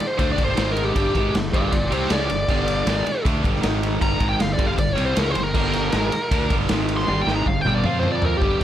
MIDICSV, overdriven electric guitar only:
0, 0, Header, 1, 3, 480
1, 0, Start_track
1, 0, Key_signature, -2, "minor"
1, 0, Tempo, 382897
1, 1198, Time_signature, 4, 2, 24, 8
1, 10829, End_track
2, 0, Start_track
2, 0, Title_t, "Overdriven electric guitar"
2, 0, Program_c, 0, 29
2, 227, Note_on_c, 0, 50, 98
2, 233, Note_on_c, 0, 57, 104
2, 244, Note_on_c, 0, 62, 102
2, 449, Note_off_c, 0, 50, 0
2, 458, Note_on_c, 0, 43, 92
2, 464, Note_on_c, 0, 50, 95
2, 468, Note_off_c, 0, 57, 0
2, 473, Note_off_c, 0, 62, 0
2, 473, Note_on_c, 0, 55, 97
2, 690, Note_off_c, 0, 43, 0
2, 695, Note_off_c, 0, 50, 0
2, 695, Note_on_c, 0, 44, 91
2, 700, Note_on_c, 0, 51, 101
2, 705, Note_off_c, 0, 55, 0
2, 710, Note_on_c, 0, 56, 106
2, 1178, Note_off_c, 0, 44, 0
2, 1182, Note_off_c, 0, 51, 0
2, 1183, Note_on_c, 0, 43, 100
2, 1187, Note_off_c, 0, 56, 0
2, 1191, Note_on_c, 0, 50, 109
2, 1199, Note_on_c, 0, 55, 115
2, 1423, Note_off_c, 0, 43, 0
2, 1427, Note_off_c, 0, 50, 0
2, 1432, Note_off_c, 0, 55, 0
2, 1443, Note_on_c, 0, 44, 86
2, 1453, Note_on_c, 0, 51, 89
2, 1455, Note_on_c, 0, 56, 94
2, 1674, Note_off_c, 0, 44, 0
2, 1679, Note_off_c, 0, 51, 0
2, 1680, Note_off_c, 0, 56, 0
2, 1686, Note_on_c, 0, 43, 65
2, 1694, Note_on_c, 0, 50, 77
2, 1875, Note_off_c, 0, 43, 0
2, 1878, Note_off_c, 0, 50, 0
2, 1921, Note_on_c, 0, 43, 88
2, 1937, Note_on_c, 0, 50, 86
2, 1940, Note_on_c, 0, 55, 96
2, 2147, Note_off_c, 0, 43, 0
2, 2156, Note_off_c, 0, 50, 0
2, 2162, Note_off_c, 0, 55, 0
2, 2162, Note_on_c, 0, 43, 67
2, 2171, Note_on_c, 0, 50, 68
2, 2353, Note_off_c, 0, 43, 0
2, 2357, Note_off_c, 0, 50, 0
2, 2394, Note_on_c, 0, 48, 81
2, 2404, Note_on_c, 0, 55, 94
2, 2415, Note_on_c, 0, 60, 108
2, 2630, Note_off_c, 0, 48, 0
2, 2635, Note_off_c, 0, 55, 0
2, 2636, Note_on_c, 0, 49, 88
2, 2640, Note_off_c, 0, 60, 0
2, 2643, Note_on_c, 0, 56, 100
2, 2653, Note_on_c, 0, 61, 100
2, 2871, Note_off_c, 0, 49, 0
2, 2874, Note_off_c, 0, 56, 0
2, 2879, Note_off_c, 0, 61, 0
2, 2891, Note_on_c, 0, 43, 69
2, 2892, Note_on_c, 0, 50, 73
2, 3077, Note_off_c, 0, 43, 0
2, 3078, Note_off_c, 0, 50, 0
2, 3125, Note_on_c, 0, 43, 95
2, 3136, Note_on_c, 0, 50, 98
2, 3140, Note_on_c, 0, 55, 111
2, 3593, Note_off_c, 0, 43, 0
2, 3598, Note_on_c, 0, 44, 95
2, 3601, Note_off_c, 0, 50, 0
2, 3603, Note_off_c, 0, 55, 0
2, 3608, Note_on_c, 0, 51, 99
2, 3613, Note_on_c, 0, 56, 109
2, 3832, Note_off_c, 0, 44, 0
2, 3837, Note_off_c, 0, 51, 0
2, 3839, Note_off_c, 0, 56, 0
2, 4077, Note_on_c, 0, 50, 104
2, 4093, Note_on_c, 0, 57, 90
2, 4095, Note_on_c, 0, 62, 106
2, 4294, Note_off_c, 0, 50, 0
2, 4302, Note_on_c, 0, 43, 84
2, 4309, Note_on_c, 0, 50, 87
2, 4315, Note_off_c, 0, 57, 0
2, 4320, Note_off_c, 0, 62, 0
2, 4320, Note_on_c, 0, 55, 101
2, 4530, Note_off_c, 0, 43, 0
2, 4535, Note_on_c, 0, 44, 100
2, 4537, Note_off_c, 0, 50, 0
2, 4542, Note_on_c, 0, 51, 94
2, 4549, Note_off_c, 0, 55, 0
2, 4554, Note_on_c, 0, 56, 108
2, 5011, Note_off_c, 0, 44, 0
2, 5016, Note_on_c, 0, 43, 102
2, 5019, Note_off_c, 0, 51, 0
2, 5024, Note_off_c, 0, 56, 0
2, 5024, Note_on_c, 0, 50, 104
2, 5029, Note_on_c, 0, 55, 108
2, 5258, Note_off_c, 0, 43, 0
2, 5263, Note_on_c, 0, 44, 93
2, 5265, Note_off_c, 0, 50, 0
2, 5267, Note_off_c, 0, 55, 0
2, 5271, Note_on_c, 0, 51, 95
2, 5276, Note_on_c, 0, 56, 97
2, 5504, Note_off_c, 0, 44, 0
2, 5507, Note_off_c, 0, 51, 0
2, 5511, Note_off_c, 0, 56, 0
2, 5512, Note_on_c, 0, 50, 74
2, 5513, Note_on_c, 0, 43, 67
2, 5708, Note_off_c, 0, 43, 0
2, 5708, Note_off_c, 0, 50, 0
2, 5739, Note_on_c, 0, 43, 82
2, 5744, Note_on_c, 0, 50, 89
2, 5755, Note_on_c, 0, 55, 95
2, 5953, Note_off_c, 0, 43, 0
2, 5960, Note_off_c, 0, 50, 0
2, 5968, Note_on_c, 0, 43, 65
2, 5976, Note_on_c, 0, 50, 78
2, 5990, Note_off_c, 0, 55, 0
2, 6176, Note_off_c, 0, 43, 0
2, 6179, Note_off_c, 0, 50, 0
2, 6209, Note_on_c, 0, 48, 95
2, 6217, Note_on_c, 0, 55, 105
2, 6225, Note_on_c, 0, 60, 100
2, 6441, Note_off_c, 0, 48, 0
2, 6446, Note_on_c, 0, 49, 99
2, 6456, Note_off_c, 0, 55, 0
2, 6461, Note_on_c, 0, 56, 103
2, 6462, Note_off_c, 0, 60, 0
2, 6467, Note_on_c, 0, 61, 97
2, 6695, Note_off_c, 0, 49, 0
2, 6703, Note_off_c, 0, 56, 0
2, 6706, Note_off_c, 0, 61, 0
2, 6711, Note_on_c, 0, 43, 64
2, 6713, Note_on_c, 0, 50, 71
2, 6907, Note_off_c, 0, 43, 0
2, 6908, Note_off_c, 0, 50, 0
2, 6949, Note_on_c, 0, 43, 114
2, 6955, Note_on_c, 0, 50, 110
2, 6964, Note_on_c, 0, 55, 115
2, 7426, Note_off_c, 0, 43, 0
2, 7429, Note_off_c, 0, 50, 0
2, 7433, Note_off_c, 0, 55, 0
2, 7435, Note_on_c, 0, 44, 95
2, 7440, Note_on_c, 0, 51, 106
2, 7451, Note_on_c, 0, 56, 101
2, 7669, Note_off_c, 0, 44, 0
2, 7672, Note_off_c, 0, 51, 0
2, 7677, Note_off_c, 0, 56, 0
2, 7922, Note_on_c, 0, 50, 100
2, 7928, Note_on_c, 0, 57, 101
2, 7935, Note_on_c, 0, 62, 101
2, 8152, Note_off_c, 0, 50, 0
2, 8155, Note_off_c, 0, 57, 0
2, 8159, Note_off_c, 0, 62, 0
2, 8169, Note_on_c, 0, 43, 94
2, 8176, Note_on_c, 0, 50, 97
2, 8184, Note_on_c, 0, 55, 112
2, 8388, Note_off_c, 0, 43, 0
2, 8393, Note_on_c, 0, 44, 96
2, 8399, Note_off_c, 0, 50, 0
2, 8403, Note_off_c, 0, 55, 0
2, 8405, Note_on_c, 0, 51, 95
2, 8412, Note_on_c, 0, 56, 105
2, 8867, Note_off_c, 0, 44, 0
2, 8871, Note_off_c, 0, 51, 0
2, 8874, Note_on_c, 0, 43, 112
2, 8876, Note_off_c, 0, 56, 0
2, 8876, Note_on_c, 0, 50, 117
2, 8884, Note_on_c, 0, 55, 121
2, 9108, Note_off_c, 0, 43, 0
2, 9109, Note_off_c, 0, 50, 0
2, 9113, Note_off_c, 0, 55, 0
2, 9116, Note_on_c, 0, 44, 98
2, 9128, Note_on_c, 0, 51, 103
2, 9130, Note_on_c, 0, 56, 102
2, 9348, Note_off_c, 0, 44, 0
2, 9354, Note_off_c, 0, 51, 0
2, 9355, Note_off_c, 0, 56, 0
2, 9365, Note_on_c, 0, 43, 67
2, 9372, Note_on_c, 0, 50, 79
2, 9552, Note_off_c, 0, 43, 0
2, 9556, Note_off_c, 0, 50, 0
2, 9602, Note_on_c, 0, 43, 86
2, 9612, Note_on_c, 0, 50, 91
2, 9622, Note_on_c, 0, 55, 101
2, 9831, Note_off_c, 0, 43, 0
2, 9833, Note_off_c, 0, 50, 0
2, 9838, Note_on_c, 0, 53, 100
2, 9842, Note_off_c, 0, 55, 0
2, 9849, Note_on_c, 0, 60, 101
2, 9850, Note_on_c, 0, 65, 112
2, 10549, Note_off_c, 0, 53, 0
2, 10555, Note_off_c, 0, 60, 0
2, 10555, Note_off_c, 0, 65, 0
2, 10555, Note_on_c, 0, 43, 90
2, 10560, Note_on_c, 0, 50, 102
2, 10569, Note_on_c, 0, 55, 104
2, 10769, Note_off_c, 0, 43, 0
2, 10779, Note_off_c, 0, 50, 0
2, 10783, Note_off_c, 0, 55, 0
2, 10784, Note_on_c, 0, 43, 93
2, 10829, Note_off_c, 0, 43, 0
2, 10829, End_track
3, 0, Start_track
3, 0, Title_t, "Muted overdriven electric guitar strokes"
3, 3847, Note_on_c, 9, 29, 55
3, 3973, Note_off_c, 9, 29, 0
3, 7679, Note_on_c, 9, 29, 56
3, 7804, Note_off_c, 9, 29, 0
3, 10829, End_track
0, 0, End_of_file